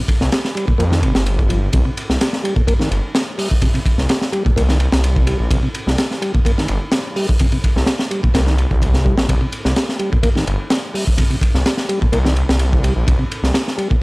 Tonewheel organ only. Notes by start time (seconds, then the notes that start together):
0.55 G3
0.67 A#2
0.78 A#3
0.91 D#3
1.02 C3
1.49 F3
1.73 C3
1.85 C3
2.44 G3
2.56 A#2
2.67 A#3
2.80 D#3
3.38 G3
3.61 C3
3.74 C3
4.33 G3
4.45 A#2
4.56 A#3
4.69 D#3
5.27 G3
5.51 C3
5.63 C3
6.22 G3
6.34 A#2
6.45 A#3
6.58 D#3
7.16 G3
7.40 C3
7.52 C3
8.11 G3
8.23 A#2
8.34 A#3
8.46 D#3
9.05 G3
9.28 C3
9.41 C3
9.99 G3
10.12 A#2
10.23 A#3
10.36 D#3
10.94 G3
11.17 C3
11.30 C3
11.89 G3
12.01 A#2
12.12 A#3
12.25 D#3
12.83 G3
13.07 C3
13.19 C3
13.78 G3
13.90 A#2